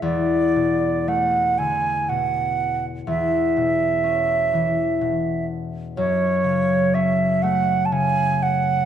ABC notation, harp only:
X:1
M:3/4
L:1/8
Q:1/4=61
K:Emix
V:1 name="Harp" clef=bass
E,, B,, A, D, B,,2 | E,, B,, C E, B,,2 | F,, C, C A, C,2 |]